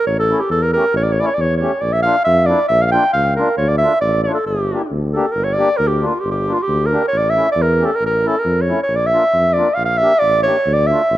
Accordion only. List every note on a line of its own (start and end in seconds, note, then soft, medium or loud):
0.30 0.40 A3 medium
0.30 0.41 C#4 medium
0.30 0.41 E4 medium
0.75 0.84 A3 medium
0.75 0.85 C#4 medium
0.75 0.85 G4 medium
1.20 1.29 A3 medium
1.20 1.29 C#4 medium
1.20 1.29 E4 medium
1.60 1.71 A3 medium
1.60 1.72 C#4 medium
1.60 1.72 G4 medium
2.05 2.16 A#3 medium
2.05 2.16 D4 medium
2.05 2.16 F4 medium
2.48 2.59 A#3 medium
2.48 2.59 D4 medium
2.48 2.60 E4 medium
2.93 3.04 A#3 medium
2.93 3.04 D4 medium
2.93 3.04 F4 medium
3.38 3.48 A#3 medium
3.38 3.49 D4 medium
3.38 3.49 F4 medium
3.82 3.93 A3 medium
3.82 3.93 D4 soft
3.82 3.93 F4 medium
4.28 4.38 A3 medium
4.28 4.38 D4 soft
4.28 4.38 F4 medium
4.72 4.82 A#3 medium
4.72 4.82 D4 soft
4.72 4.82 G4 medium
5.14 5.25 A#3 medium
5.14 5.25 D4 medium
5.14 5.26 G4 medium
5.58 5.69 A#3 medium
5.58 5.69 D4 medium
5.58 5.69 G4 medium
6.02 6.13 A#3 medium
6.02 6.13 D4 medium
6.02 6.13 F4 medium
6.47 6.58 A#3 medium
6.47 6.58 D4 medium
6.47 6.58 F4 medium
6.92 7.03 A#3 medium
6.92 7.02 D4 medium
6.92 7.03 G4 medium
7.37 7.47 A3 medium
7.37 7.47 C#4 medium
7.37 7.47 E4 medium
7.80 7.91 A3 medium
7.80 7.91 C#4 medium
7.80 7.91 G4 medium
8.25 8.35 A3 medium
8.25 8.35 C#4 medium
8.25 8.35 E4 medium
8.69 8.79 A3 medium
8.69 8.79 C#4 soft
8.69 8.80 E4 medium
9.13 9.24 A#3 medium
9.13 9.24 D4 medium
9.13 9.24 F4 medium
9.58 9.68 A#3 medium
9.58 9.68 D4 medium
9.58 9.68 F4 medium
10.02 10.13 A#3 medium
10.02 10.13 D4 medium
10.02 10.13 G4 medium
10.45 10.56 A#3 medium
10.45 10.57 D4 soft
10.45 10.57 G4 medium
10.90 11.01 A3 medium
10.90 11.02 D4 soft
10.90 11.02 F4 medium